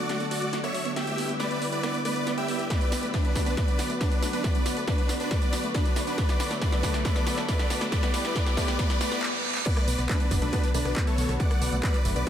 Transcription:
Already playing: D3 F#3 A3 F#4 A4
0.00 F#4 D5
0.09 A3, snare, closed hi-hat
0.20 B3, closed hi-hat
0.31 B3 F#4 D5, open hi-hat
0.42 A3, closed hi-hat
0.53 B3, snare, closed hi-hat
0.64 B3 C#5 E5, cross-stick, closed hi-hat
0.75 A3, open hi-hat
0.85 B3, closed hi-hat
0.96 G3 B3 E4 G4 B4 E5, snare, closed hi-hat
1.07 A3, closed hi-hat
1.18 B3, open hi-hat
1.29 B3, closed hi-hat
1.40 A3 B4 D5, snare, closed hi-hat
1.51 B3, closed hi-hat
1.62 B3, open hi-hat
1.72 A3 B4 D5, closed hi-hat
1.83 B3, cross-stick, snare, closed hi-hat
1.94 B3, closed hi-hat
2.05 A3 B4 D5, cross-stick, open hi-hat
2.16 B3, closed hi-hat
2.27 B3, snare, closed hi-hat
2.38 A3 G4 E5, closed hi-hat
2.48 B3, open hi-hat
2.59 B3, closed hi-hat
2.70 F#3 A3 B3 F#4 B4 D5, kick, snare, closed hi-hat, tambourine, riser
2.81 B3, closed hi-hat, tambourine
2.92 B3, snare, open hi-hat, tambourine
3.03 A3, closed hi-hat, tambourine
3.14 B3 D4 B4, kick, snare, closed hi-hat, tambourine
3.25 B3, closed hi-hat
3.35 A3, kick, snare, open hi-hat, tambourine
3.46 B3 D4 B4, closed hi-hat, tambourine
3.57 A3 B4 D5, kick, snare, closed hi-hat, tambourine
3.68 B3, closed hi-hat, tambourine
3.79 B3, snare, open hi-hat, tambourine
3.90 A3, closed hi-hat, tambourine
4.01 B3 D4 B4, kick, snare, closed hi-hat, tambourine
4.12 B3, closed hi-hat, tambourine
4.22 A3, snare, open hi-hat, tambourine
4.33 B3 D4 B4, closed hi-hat, tambourine
4.44 A3 B4 D5, kick, snare, closed hi-hat, tambourine
4.55 B3, closed hi-hat, tambourine
4.66 B3, snare, open hi-hat, tambourine
4.77 A3, closed hi-hat, tambourine
4.88 B3 D4 B4, kick, snare, closed hi-hat, tambourine
4.98 B3, closed hi-hat
5.09 A3, snare, open hi-hat, tambourine
5.20 B3 D4 B4, closed hi-hat, tambourine
5.31 A3 B4 D5, kick, snare, closed hi-hat, tambourine
5.42 B3, closed hi-hat, tambourine
5.53 B3, snare, open hi-hat, tambourine
5.64 A3, closed hi-hat, tambourine
5.74 B3 D4 B4, kick, snare, closed hi-hat, tambourine
5.85 B3, closed hi-hat, tambourine
5.96 A3, snare, open hi-hat, tambourine
6.07 B3 D4 B4, closed hi-hat, tambourine
6.18 D3 F#3 A3 A4 B4 D5, kick, snare, closed hi-hat, tambourine
6.29 B3, snare, closed hi-hat, tambourine
6.40 B3, snare, open hi-hat, tambourine
6.51 A3, snare, closed hi-hat, tambourine
6.61 A3 B4 D5, kick, snare, closed hi-hat, tambourine
6.72 B3, snare, closed hi-hat
6.83 B3, kick, snare, open hi-hat, tambourine
6.94 A3, snare, closed hi-hat, tambourine
7.05 A3 B4 D5, kick, snare, closed hi-hat, tambourine
7.16 B3, snare, closed hi-hat, tambourine
7.27 B3, snare, open hi-hat, tambourine
7.38 A3, snare, closed hi-hat, tambourine
7.49 A3 B4 D5, kick, snare, closed hi-hat, tambourine
7.59 B3, snare, closed hi-hat, tambourine
7.70 B3, snare, open hi-hat, tambourine
7.81 A3, snare, closed hi-hat, tambourine
7.92 G3 A3 B3 E4 G4 B4 D5, kick, snare, closed hi-hat, tambourine
8.03 B3, snare, closed hi-hat, tambourine
8.14 A3 B4 D5, snare, open hi-hat, tambourine
8.25 B3, snare, closed hi-hat, tambourine
8.35 A3 B4 D5, kick, snare, closed hi-hat, tambourine
8.46 B3, snare, closed hi-hat, tambourine
8.57 A3 B4 D5, kick, snare, open hi-hat, tambourine
8.68 B3, snare, closed hi-hat, tambourine
8.79 A3 B4 D5, kick, snare, closed hi-hat, tambourine, reverse cymbal
8.90 B3, snare, closed hi-hat, tambourine
9.00 A3 B4 D5, snare, open hi-hat, tambourine
9.12 B3, snare, closed hi-hat, tambourine
9.22 clap
9.55 clap
9.66 D3 F#3 B3 F#4 B4 D5, kick, closed hi-hat, crash, tambourine
9.77 A3, cross-stick, closed hi-hat, tambourine
9.88 B1 B3, open hi-hat, tambourine
9.98 B1 B3, closed hi-hat, tambourine
10.09 A3 D4 B4, kick, clap, closed hi-hat, tambourine
10.20 B3, closed hi-hat
10.31 F#1 B3, kick, open hi-hat, tambourine
10.42 B1 A3 D4 B4, closed hi-hat, tambourine
10.53 B3, kick, closed hi-hat, tambourine
10.64 B3, closed hi-hat, tambourine
10.74 B1 A3 D4 B4, cross-stick, open hi-hat, tambourine
10.85 B1 B3, cross-stick, closed hi-hat, tambourine
10.96 B3, kick, clap, closed hi-hat, tambourine
11.07 A3 A4 C#5, closed hi-hat, tambourine
11.18 B1 B3, open hi-hat, tambourine
11.29 B1 B3, cross-stick, closed hi-hat, tambourine
11.40 A3 D5 F#5, kick, closed hi-hat, tambourine
11.51 B3, cross-stick, closed hi-hat, tambourine
11.62 B1 B3, open hi-hat, tambourine
11.72 B1 A3, closed hi-hat, tambourine
11.83 B3 B4 D5, kick, clap, closed hi-hat, tambourine
11.94 B3, clap, closed hi-hat, tambourine
12.05 F#1 A3, open hi-hat, tambourine
12.16 B1 B3 B4 D5, closed hi-hat, tambourine

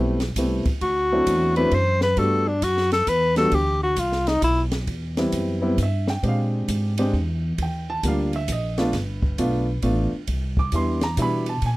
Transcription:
Already playing: B1 G3 A3 B3 C4 E4
0.20 snare, ride
0.36 C2 G3 A3 B3 C4 E4, kick, hi-hat pedal, ride
0.65 kick, ride
0.81 D2 F#4, kick, ride
1.12 F#3 A3 C4 D4 E4
1.27 E2, kick, hi-hat pedal, ride
1.56 F#3 A3 C4 D4 E4 B4, ride
1.71 F#2 C5, kick, ride
2.01 B4, snare
2.17 G2 G3 A3 B3 D4 F#4 A4, kick, ride
2.48 D4
2.62 F#2 F#4, kick, hi-hat pedal, ride
2.77 snare
2.92 A4, snare, ride
3.07 E2 B4, kick, hi-hat pedal, ride
3.36 G3 A3 B3 D4 F#4 A4, snare, ride
3.52 D2 G4, kick, ride
3.83 F#4
3.96 C2 F4, kick, hi-hat pedal, ride
4.12 snare
4.27 D#4, snare, ride
4.42 B1 E4, kick, hi-hat pedal, ride
4.71 snare, ride
4.87 E2, kick, ride
5.17 G3 B3 C4 E4, snare, ride
5.32 F#2, kick, hi-hat pedal, ride
5.62 G3 B3 C4 E4
5.78 G2, kick, hi-hat pedal, ride
5.83 E5
6.07 G5, snare
6.23 A#2 G#3 C4 D4 G4, kick, ride
6.28 F5
6.68 G#2, kick, hi-hat pedal, ride
6.98 G#3 C4 D4 G4, ride
7.13 E2, kick
7.58 D#2, kick, ride
7.62 G5
7.90 A5
8.03 D2 G3 A#3 D4 F4, kick, hi-hat pedal, ride
8.08 F5
8.33 E5, ride
8.48 A#1, kick, hi-hat pedal, ride
8.52 D#5
8.78 A3 B3 D4 F4 B4, snare, ride
8.93 G1, kick, snare, ride
9.22 kick
9.38 B1 A3 B3 D4 F4, kick, hi-hat pedal, ride
9.82 A1 A3 B3 D4 F4, kick, ride
10.27 C2, kick, ride
10.57 D6, kick
10.72 E2 G3 B3 D4 E4 C6, kick, hi-hat pedal, ride
11.01 A#5, snare, ride
11.17 B2 G3 B3 D4 E4, kick, hi-hat pedal, ride
11.22 B5
11.46 A5, ride
11.62 A#2, kick, ride
11.66 G#5

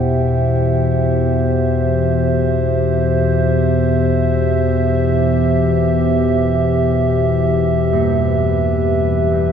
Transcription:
Already playing: E2 B2 E3 E4 G4 C5 E5 F#5 G5
7.93 G3
7.98 B4

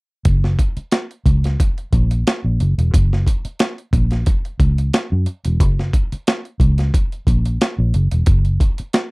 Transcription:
0.25 F#1, kick, closed hi-hat
0.44 snare
0.59 kick, closed hi-hat
0.77 muted fingered electric bass stroke, closed hi-hat
0.92 snare, closed hi-hat
1.11 closed hi-hat
1.26 C#2, kick, closed hi-hat
1.44 snare, closed hi-hat
1.60 kick, closed hi-hat
1.78 closed hi-hat
1.93 A#1, kick, closed hi-hat
2.11 closed hi-hat
2.27 snare, closed hi-hat
2.44 A#1
2.60 F#1, closed hi-hat
2.78 E1, closed hi-hat
2.94 F#1, kick, closed hi-hat
3.13 snare
3.27 kick, closed hi-hat
3.45 muted fingered electric bass stroke, closed hi-hat
3.59 snare, closed hi-hat
3.78 closed hi-hat
3.93 A#1, kick, closed hi-hat
4.11 snare, closed hi-hat
4.26 kick, closed hi-hat
4.45 closed hi-hat
4.59 C#2, kick, closed hi-hat
4.78 closed hi-hat
4.93 snare, closed hi-hat
5.12 F#2
5.26 closed hi-hat
5.45 E1, closed hi-hat
5.60 F#1, kick, closed hi-hat
5.79 snare
5.93 kick, closed hi-hat
6.12 muted fingered electric bass stroke, closed hi-hat
6.27 snare, closed hi-hat
6.45 closed hi-hat
6.60 C#2, kick, closed hi-hat
6.78 snare, closed hi-hat
6.94 kick, closed hi-hat
7.12 closed hi-hat
7.27 A#1, kick, closed hi-hat
7.45 closed hi-hat
7.61 snare, closed hi-hat
7.78 A#1
7.94 F#1, closed hi-hat
8.11 E1, closed hi-hat
8.26 F#1, kick, closed hi-hat
8.45 closed hi-hat
8.60 kick, closed hi-hat
8.78 muted fingered electric bass stroke, closed hi-hat
8.93 snare, closed hi-hat

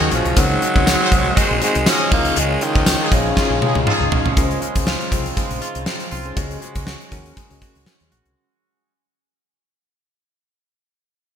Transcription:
Already playing: F#2 C#3 D#3 F#3 G#3 C#4 F#4 G#4 C5 C#5 D#5
0.01 D#2
0.11 A#1 F3 C#4, closed hi-hat
0.25 C2, closed hi-hat
0.36 C#2 G#2 C#3 D#3 F#3 G#3 C4 D#4 F#4 G#4 A#4 C5, kick, closed hi-hat
0.62 D#3 G#3, closed hi-hat
0.75 C#2 C4 D#4 F#4 G#4 C5, kick
0.86 C4, snare, closed hi-hat, tambourine
1.01 G#3 F#4 C5
1.11 C2 G#3, kick, closed hi-hat
1.36 G#2 D#3 G#3 F#4 C5, kick, closed hi-hat
1.51 A#1
1.61 G#3 C4 D#4 F#4 G#4 C5, closed hi-hat
1.75 C2, closed hi-hat
1.86 G#3 C#4 F4 F#4 D#5, snare, closed hi-hat, tambourine
2.11 C#2 C#3 D#3 G#3 A#3 C#4 D#4 E4 F4 G#4 C#5, kick, crash
2.18 F4
2.25 closed hi-hat
2.36 C#2 D#3 G#3, closed hi-hat
2.61 D#3 G#3 C#4, closed hi-hat
2.75 C#2 C#4 D#4 F4 G#4 C5, kick
2.86 C#4, snare, closed hi-hat, tambourine
3.01 F3 D#4 G#4
3.12 A#1 C#3 G#3, kick, closed hi-hat
3.35 C#3 F3 G#3 C#4 D#4 F4 G#4 C#5, kick, snare
3.42 C#4
3.50 A#1
3.62 F3 G#3 D#4 G#4, high tom
3.75 C#2, high tom
3.87 F3 D#4 F4 G#4, mid tom
4.00 C#2
4.12 A#1 C#4, floor tom
4.25 C2, floor tom
4.36 C#2 C#3 G#3 C#4 D#4 F4 G#4 A#4 C5, kick, closed hi-hat
4.43 C5
4.51 closed hi-hat
4.62 G#3, closed hi-hat
4.75 C#2, kick, closed hi-hat
4.87 F4, snare
5.01 closed hi-hat
5.11 C2 C#3 C4 F4 G#4 C5, kick, closed hi-hat
5.26 closed hi-hat
5.37 G#3, kick, closed hi-hat
5.51 A#1, closed hi-hat
5.62 F4, closed hi-hat
5.75 C2, closed hi-hat
5.86 C4, snare
6.00 closed hi-hat
6.11 C2 F4, open hi-hat
6.25 C#4 F4 G#4 C5, closed hi-hat
6.36 C#2 C#3 G#3 C#4 F#4 G#4 C#5, kick, closed hi-hat
6.51 closed hi-hat
6.62 G#3, closed hi-hat
6.75 C#2, kick, closed hi-hat
6.87 F#4, snare
7.01 closed hi-hat
7.11 D#2 C#4 F#4 G#4 A#4, kick, closed hi-hat
7.26 closed hi-hat
7.37 G#3, kick, closed hi-hat
7.50 C#2 C#4 F#4 G#4 C#5, closed hi-hat
7.62 F#4, kick, closed hi-hat
7.75 C#2, closed hi-hat
7.86 C#4, snare
8.00 D#2, closed hi-hat
8.12 A#1 F#4, closed hi-hat
8.26 C2, closed hi-hat

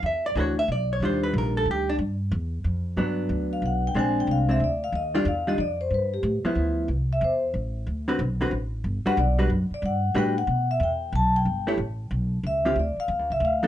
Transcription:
0.03 E2 E5
0.26 D5
0.35 D2 E3 D4 F#4 G#4
0.40 C#5
0.59 E5
0.68 B1 D5
0.93 C#5
1.00 D#2 D#3 G3 D4 F4
1.05 C5
1.23 B4
1.33 A#1
1.38 A#4
1.57 A4
1.66 D2
1.71 G4
1.89 D4
1.99 G2
2.31 E2
2.64 F2
2.97 G2 F#3 B3 D4
3.29 D2
3.53 F5
3.62 B1 F#5
3.87 G5
3.94 A#1 G#3 C4 D4
3.99 G#5
4.20 G5
4.27 C2
4.31 F5
4.49 G#3 C4 D4 E5
4.60 D2
4.64 D5
4.84 F5
4.92 D#2 D#5
5.15 D#3 G3 D4 F4 D5
5.25 E2 F5
5.47 D#3 G3 D4 F4 D#5
5.58 F2 D5
5.81 C5
5.91 G2 B4
6.14 G4
6.23 A2
6.44 F3 B3 E4, muted upright bass stroke
6.55 D2
6.88 C2
7.13 E5
7.21 E2 C5
7.54 A1
7.87 D2
8.08 D3 C4 F#4 B4
8.19 B1
8.41 D3 C4 F#4 B4
8.51 A1
8.84 G1
9.05 G3 D4 F#4 B4 F#5, muted upright bass stroke
9.17 B1 D5
9.39 G3 D4 F#4 B4
9.50 F#2
9.71 D5, muted upright bass stroke
9.82 G2 F#5
10.14 A2 G3 D4 F#4 B4 G5
10.38 F#5
10.47 B2
10.71 E5
10.80 E2 G5
11.12 B1 A5
11.36 G5
11.45 G1
11.67 A3 E4 G4 C#5
11.78 A1
12.11 B1
12.43 C#2 E5
12.65 D3 C4 F4 G4
12.76 D2 D5
12.96 F5, muted upright bass stroke
13.08 E2
13.19 D2
13.30 C2 E5
13.40 D2
13.45 F5
13.63 F3 B3 D#4 A4

